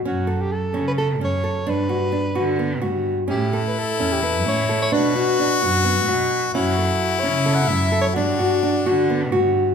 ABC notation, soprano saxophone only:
X:1
M:7/8
L:1/16
Q:1/4=129
K:F#phr
V:1 name="Soprano saxophone"
F3 G A3 B A2 c4 | B8 z6 | G3 B A3 G B2 c3 c | B8 z6 |
F6 c3 f e3 c | F12 z2 |]